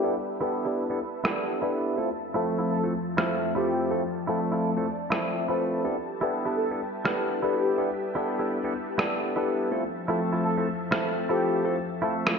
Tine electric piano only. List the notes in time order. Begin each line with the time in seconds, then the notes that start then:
0.03 B3 D4 E4 G4 A4
0.41 B3 D4 E4 G4 A4
0.90 B3 D4 E4 G4 A4
1.24 B3 D4 E4 G4 A4
1.62 B3 D4 E4 G4 A4
1.97 A3 C4 E4 F4 A4
2.35 F3 A3 C4 A4 E5
2.83 A3 C4 E4 F4 A4
3.18 F3 A3 C4 A4 E5
3.56 F3 A3 C4 A4 E5
3.90 A3 C4 E4 F4 A4
4.28 F3 A3 C4 A4 E5
4.77 A3 C4 E4 F4 A4
5.12 F3 A3 C4 A4 E5
5.49 F3 A3 C4 A4 E5
5.84 B3 D4 E4 G4 A4
6.22 B3 D4 E4 G4 A4
6.71 B3 D4 E4 G4 A4
7.05 B3 D4 E4 G4 A4
7.43 B3 D4 E4 G4 A4
7.77 B3 D4 E4 G4 A4
8.16 B3 D4 E4 G4 A4
8.64 B3 D4 E4 G4 A4
8.98 B3 D4 E4 G4 A4
9.36 B3 D4 E4 G4 A4
9.71 A3 C4 E4 F4 A4
10.09 F3 A3 C4 A4 E5
10.57 A3 C4 E4 F4 A4
10.92 F3 A3 C4 A4 E5
11.30 F3 A3 C4 A4 E5
11.64 A3 C4 E4 F4 A4
12.02 F3 A3 C4 A4 E5